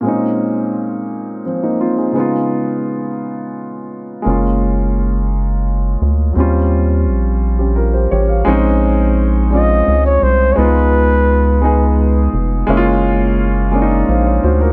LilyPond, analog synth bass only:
\new Staff \with { instrumentName = "Analog synth bass" } { \clef bass \time 6/8 \key bes \minor \tempo 4. = 57 r2. | r2. | ges,,2~ ges,,8 d,8 | ees,4 bes,,4. a,,8 |
bes,,2 des,8 c,8 | des,2~ des,8 f,,8 | ges,,2 bes,,8 d,8 | }